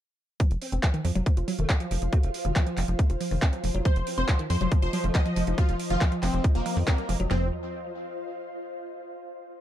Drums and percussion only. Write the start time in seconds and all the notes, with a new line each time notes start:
0.40 kick, closed hi-hat
0.51 closed hi-hat
0.62 open hi-hat
0.72 closed hi-hat
0.83 kick, clap, closed hi-hat
0.94 closed hi-hat
1.05 open hi-hat
1.16 closed hi-hat
1.26 kick, closed hi-hat
1.37 closed hi-hat
1.48 open hi-hat
1.59 closed hi-hat
1.69 kick, clap, closed hi-hat
1.80 closed hi-hat
1.91 open hi-hat
2.02 closed hi-hat
2.13 kick, closed hi-hat
2.23 closed hi-hat
2.34 open hi-hat
2.45 closed hi-hat
2.56 kick, clap, closed hi-hat
2.67 closed hi-hat
2.77 clap, open hi-hat
2.88 closed hi-hat
2.99 kick, closed hi-hat
3.10 closed hi-hat
3.21 open hi-hat
3.31 open hi-hat
3.42 kick, clap, closed hi-hat
3.53 closed hi-hat
3.64 open hi-hat
3.75 closed hi-hat
3.85 kick, closed hi-hat
3.96 closed hi-hat
4.07 open hi-hat
4.18 closed hi-hat
4.28 kick, clap, closed hi-hat
4.39 closed hi-hat
4.50 open hi-hat
4.61 closed hi-hat
4.72 kick, closed hi-hat
4.82 closed hi-hat
4.93 open hi-hat
5.04 closed hi-hat
5.15 kick, clap, closed hi-hat
5.26 closed hi-hat
5.36 open hi-hat
5.47 closed hi-hat
5.58 kick, closed hi-hat
5.69 closed hi-hat
5.79 open hi-hat
5.90 closed hi-hat
6.01 kick, clap, closed hi-hat
6.12 closed hi-hat
6.23 clap, open hi-hat
6.33 closed hi-hat
6.44 kick, closed hi-hat
6.55 closed hi-hat
6.66 open hi-hat
6.77 open hi-hat
6.87 kick, clap, closed hi-hat
6.98 closed hi-hat
7.09 open hi-hat
7.20 closed hi-hat
7.31 snare, floor tom